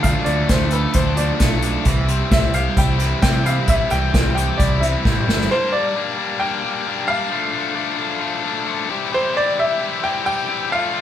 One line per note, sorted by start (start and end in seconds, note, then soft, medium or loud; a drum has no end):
0.00 0.13 D2 loud
0.00 1.16 D3 medium
0.00 0.27 A3 medium
0.00 0.95 D4 medium
0.00 0.27 F5 medium
0.00 closed hi-hat medium
0.04 1.18 F3 medium
0.04 1.17 A3 medium
0.04 1.17 D4 medium
0.04 1.15 F4 medium
0.04 kick medium
0.24 0.44 D2 medium
0.24 0.49 D5 medium
0.24 closed hi-hat medium
0.28 0.49 A3 medium
0.49 0.85 D2 medium
0.49 1.40 A3 medium
0.49 0.73 C5 medium
0.49 kick medium
0.49 snare loud
0.49 closed hi-hat medium
0.71 1.86 A4 medium
0.71 0.96 B4 medium
0.71 closed hi-hat medium
0.94 1.30 D2 medium
0.94 1.61 D4 medium
0.94 1.18 C5 medium
0.94 kick loud
0.94 closed hi-hat medium
1.16 1.38 D3 medium
1.16 1.86 F3 medium
1.16 1.39 A3 medium
1.16 1.39 D4 medium
1.16 1.38 F4 medium
1.16 1.60 D5 medium
1.16 closed hi-hat medium
1.40 1.76 B1 medium
1.40 1.84 D3 medium
1.40 1.85 A3 medium
1.40 1.86 A3 medium
1.40 1.86 D4 medium
1.40 1.86 F4 medium
1.40 kick loud
1.40 snare loud
1.40 closed hi-hat medium
1.62 1.86 D4 medium
1.62 closed hi-hat medium
1.85 2.21 C2 medium
1.85 2.98 C3 medium
1.85 2.98 E3 medium
1.85 2.99 E3 medium
1.85 3.00 G3 medium
1.85 2.97 C4 medium
1.85 2.97 E4 medium
1.85 kick loud
1.85 closed hi-hat medium
2.08 2.30 C4 medium
2.08 closed hi-hat medium
2.31 2.67 C2 medium
2.31 3.22 C4 medium
2.31 2.55 E5 medium
2.31 kick loud
2.31 snare medium
2.31 closed hi-hat medium
2.54 4.35 G4 medium
2.54 2.78 F5 medium
2.54 closed hi-hat medium
2.77 3.13 C2 loud
2.77 3.44 E4 medium
2.77 3.21 G5 medium
2.77 kick medium
2.77 closed hi-hat medium
2.98 3.21 C3 medium
2.98 3.67 E3 medium
2.98 3.22 E3 medium
2.98 3.23 G3 medium
2.98 3.21 C4 medium
2.98 3.20 E4 medium
2.98 closed hi-hat medium
3.22 3.66 C3 medium
3.22 3.58 C3 medium
3.22 3.67 E3 medium
3.22 3.69 G3 medium
3.22 3.89 C4 medium
3.22 3.68 C4 medium
3.22 3.68 E4 medium
3.22 3.44 G5 loud
3.22 kick loud
3.22 snare loud
3.22 closed hi-hat medium
3.45 4.57 E4 medium
3.45 3.69 F5 medium
3.45 closed hi-hat medium
3.67 3.77 C2 loud
3.67 4.80 C3 medium
3.67 4.81 E3 medium
3.67 4.81 G3 medium
3.67 4.81 C4 medium
3.67 3.92 E5 medium
3.67 kick loud
3.67 closed hi-hat medium
3.71 4.80 E4 medium
3.90 4.09 C2 medium
3.90 4.12 C4 medium
3.90 4.34 G5 loud
3.90 closed hi-hat medium
4.14 4.49 C2 medium
4.14 5.04 C4 medium
4.14 kick loud
4.14 snare medium
4.14 closed hi-hat medium
4.35 5.49 G4 medium
4.35 4.59 G5 medium
4.35 closed hi-hat medium
4.57 4.95 C2 medium
4.57 5.26 E4 medium
4.57 4.82 D5 medium
4.57 kick medium
4.57 closed hi-hat medium
4.80 5.50 E3 medium
4.80 5.04 G3 medium
4.80 5.03 C4 medium
4.80 5.03 E4 medium
4.80 5.23 E5 medium
4.80 closed hi-hat medium
4.85 5.01 C3 medium
4.85 5.02 E3 medium
5.02 5.25 A1 medium
5.02 5.48 C3 medium
5.02 5.48 E3 medium
5.02 5.49 G3 medium
5.02 5.50 C4 medium
5.02 5.49 C4 medium
5.02 5.49 E4 medium
5.02 kick loud
5.02 snare medium
5.27 5.47 G1 medium
5.27 5.50 E4 medium
5.27 snare medium
5.41 snare medium
5.51 5.72 G3 medium
5.51 5.72 A#3 medium
5.51 5.73 D4 loud
5.51 7.30 G4 medium
5.51 5.72 C5 loud
5.51 8.87 F5 medium
5.51 7.30 A#5 medium
5.51 7.30 D6 medium
5.72 5.94 G3 medium
5.72 5.95 A#3 medium
5.72 5.96 D4 loud
5.72 6.42 D5 medium
5.95 6.17 G3 medium
5.95 6.17 A#3 medium
5.95 6.18 D4 loud
6.18 6.40 G3 medium
6.18 6.41 A#3 medium
6.18 6.42 D4 medium
6.40 6.63 G3 medium
6.40 6.63 A#3 loud
6.40 6.65 D4 loud
6.40 7.10 G5 loud
6.64 6.86 G3 medium
6.64 6.86 A#3 medium
6.64 6.87 D4 medium
6.87 7.08 G3 loud
6.87 7.08 A#3 medium
6.87 7.10 D4 loud
7.08 7.30 G3 medium
7.08 7.30 A#3 medium
7.08 7.31 D4 loud
7.08 8.85 F5 loud
7.30 7.51 F3 medium
7.30 7.52 A3 loud
7.30 7.53 D4 loud
7.30 8.89 A4 medium
7.30 11.01 C6 medium
7.30 10.67 D6 medium
7.53 7.73 F3 medium
7.53 7.74 A3 medium
7.53 7.75 D4 medium
7.75 7.96 F3 medium
7.75 7.97 A3 medium
7.75 7.97 D4 loud
7.97 8.19 F3 medium
7.97 8.20 A3 loud
7.97 8.20 D4 medium
8.20 8.42 F3 loud
8.20 8.43 A3 loud
8.20 8.43 D4 loud
8.44 8.65 F3 medium
8.44 8.66 A3 medium
8.44 8.66 D4 loud
8.66 8.88 F3 medium
8.66 8.88 A3 loud
8.66 8.88 D4 loud
8.88 9.11 E3 loud
8.88 9.12 C4 loud
8.88 9.12 E4 loud
8.88 9.12 G4 loud
8.88 10.69 G4 medium
8.88 11.01 D5 medium
9.12 9.33 E3 loud
9.12 9.34 C4 loud
9.12 9.34 E4 loud
9.12 9.34 G4 loud
9.12 9.36 C5 medium
9.34 9.56 E3 medium
9.34 9.57 C4 medium
9.34 9.57 E4 medium
9.34 9.57 G4 loud
9.34 9.59 D5 medium
9.57 9.79 E3 medium
9.57 9.80 C4 medium
9.57 9.80 E4 medium
9.57 9.80 G4 loud
9.57 10.05 E5 loud
9.80 10.02 E3 medium
9.80 10.03 C4 medium
9.80 10.04 E4 medium
9.80 10.03 G4 medium
10.03 10.24 E3 medium
10.03 10.25 C4 loud
10.03 10.25 E4 medium
10.03 10.26 G4 loud
10.03 10.25 G5 loud
10.26 10.47 E3 medium
10.26 10.48 C4 medium
10.26 10.48 E4 medium
10.26 10.48 G4 loud
10.26 10.72 G5 loud
10.48 10.69 E3 loud
10.48 10.70 C4 loud
10.48 10.70 E4 medium
10.48 10.70 G4 medium
10.71 10.92 A3 loud
10.71 10.92 C4 loud
10.71 10.94 F4 loud
10.71 11.01 F4 medium
10.71 11.01 F5 medium
10.71 11.01 A5 medium
10.93 11.01 A3 medium
10.93 11.01 C4 medium
10.93 11.01 F4 loud